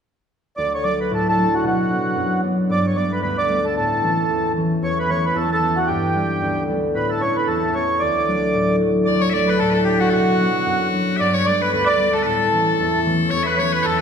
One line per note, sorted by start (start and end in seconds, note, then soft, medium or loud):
0.57 1.69 D2 medium
0.57 0.73 D5 medium
0.75 0.84 C#5 medium
0.84 1.36 F#3 soft
0.84 1.37 A3 soft
0.84 1.37 D4 soft
0.84 1.00 D5 medium
1.01 1.12 B4 medium
1.11 1.69 A2 medium
1.11 1.27 A4 medium
1.29 1.55 A4 medium
1.37 1.69 F#3 soft
1.37 2.95 A3 soft
1.37 1.90 D4 soft
1.55 1.65 F#4 medium
1.64 2.22 B2 medium
1.64 2.41 F#4 medium
1.89 2.42 F#3 soft
1.89 2.43 B3 soft
1.89 2.44 D4 soft
2.16 2.75 F#2 medium
2.43 2.75 F#3 soft
2.43 2.96 B3 soft
2.43 4.10 D4 soft
2.69 3.28 G2 medium
2.69 2.86 D5 loud
2.87 2.97 C#5 medium
2.95 3.48 G3 soft
2.95 3.49 A3 soft
2.95 3.50 B3 soft
2.95 3.12 D5 medium
3.13 3.21 B4 medium
3.22 3.81 D2 medium
3.22 3.37 B4 medium
3.38 3.65 D5 loud
3.49 3.81 G3 soft
3.49 4.03 A3 soft
3.49 6.15 B3 soft
3.65 3.75 A4 medium
3.77 4.34 A2 medium
3.77 4.52 A4 medium
4.03 4.55 E3 soft
4.03 4.56 A3 soft
4.03 4.57 C#4 soft
4.30 4.81 E2 medium
4.56 5.09 E3 soft
4.56 5.10 A3 soft
4.56 5.10 C#4 soft
4.82 5.34 E2 medium
4.82 4.99 C#5 medium
4.99 5.10 B4 medium
5.10 5.61 E3 soft
5.10 5.62 A3 soft
5.10 5.62 C#4 soft
5.10 5.25 C#5 loud
5.26 5.37 B4 medium
5.35 5.94 E2 medium
5.35 5.50 A4 medium
5.52 5.79 A4 medium
5.62 5.94 E3 soft
5.62 7.20 A3 soft
5.62 6.22 C#4 soft
5.77 5.89 F#4 medium
5.87 6.47 G2 medium
5.87 6.63 G4 medium
6.15 6.67 G3 soft
6.15 6.69 B3 soft
6.15 6.70 D4 soft
6.42 7.00 D2 medium
6.69 7.00 G3 soft
6.69 7.21 B3 soft
6.69 7.27 D4 medium
6.95 7.53 A2 medium
6.95 7.10 B4 medium
7.10 7.22 A4 medium
7.20 7.74 A3 soft
7.20 7.74 B3 soft
7.20 7.74 C#4 soft
7.20 7.37 C#5 medium
7.36 7.48 B4 medium
7.47 8.06 E2 medium
7.47 7.75 A4 medium
7.74 8.27 A3 soft
7.74 10.39 B3 soft
7.74 8.08 C#4 soft
7.74 8.02 C#5 medium
8.00 9.06 D2 medium
8.00 8.76 D5 medium
8.27 8.79 F#3 soft
8.27 8.80 A3 soft
8.27 8.81 D4 medium
8.54 9.12 A2 medium
8.80 9.12 F#3 soft
8.80 9.34 A3 soft
8.80 9.34 D4 soft
9.05 10.19 D2 medium
9.05 9.22 D5 medium
9.21 9.33 C#5 medium
9.21 9.30 C#5 medium
9.30 9.86 F#3 soft
9.30 9.34 E5 medium
9.34 9.87 A3 soft
9.34 9.87 D4 soft
9.34 9.50 D5 medium
9.34 9.49 D5 loud
9.48 9.60 B4 medium
9.59 10.19 A2 medium
9.59 9.73 A4 medium
9.59 9.70 A4 medium
9.70 9.85 A4 medium
9.70 9.80 A4 medium
9.70 9.74 B4 medium
9.85 10.19 F#3 soft
9.85 11.46 A3 soft
9.85 10.40 D4 soft
9.85 10.00 G4 medium
10.00 10.10 F#4 medium
10.10 10.88 F#4 medium
10.10 10.14 A4 medium
10.14 10.72 B2 medium
10.14 11.17 F#4 medium
10.39 10.93 F#3 soft
10.39 10.94 B3 soft
10.39 10.94 D4 soft
10.66 11.25 F#2 medium
10.94 11.25 F#3 soft
10.94 11.47 B3 soft
10.94 12.59 D4 soft
11.17 11.78 G2 medium
11.17 11.35 D5 medium
11.17 11.21 E5 medium
11.21 11.34 D5 medium
11.34 11.47 C#5 medium
11.34 11.46 C#5 medium
11.45 11.98 G3 soft
11.45 11.99 A3 soft
11.45 11.99 B3 soft
11.45 11.61 D5 medium
11.45 11.62 D5 medium
11.61 11.70 B4 medium
11.61 11.73 B4 medium
11.72 12.31 D2 medium
11.72 11.88 B4 medium
11.72 11.85 B4 medium
11.85 12.14 D5 loud
11.85 12.14 D5 medium
11.85 11.88 E5 medium
11.99 12.31 G3 soft
11.99 12.53 A3 soft
11.99 14.01 B3 soft
12.14 12.23 A4 medium
12.14 12.22 A4 medium
12.23 12.84 A2 medium
12.23 13.00 A4 medium
12.23 12.27 B4 medium
12.27 13.31 A4 medium
12.53 13.05 E3 soft
12.53 13.06 A3 soft
12.53 13.06 C#4 soft
12.80 13.31 E2 medium
13.06 13.58 E3 soft
13.06 13.59 A3 soft
13.06 13.59 C#4 soft
13.29 13.85 E2 medium
13.29 13.44 C#5 medium
13.29 13.43 C#5 medium
13.43 13.58 B4 medium
13.43 13.47 E5 medium
13.47 13.60 B4 medium
13.57 14.01 E3 soft
13.57 14.01 A3 soft
13.57 14.01 C#4 soft
13.57 13.72 C#5 loud
13.57 13.73 C#5 medium
13.73 13.83 B4 medium
13.73 13.85 B4 medium
13.83 14.01 E2 medium
13.83 13.99 A4 medium
13.83 13.98 A4 medium
13.83 13.87 C#5 medium
13.98 14.01 B4 medium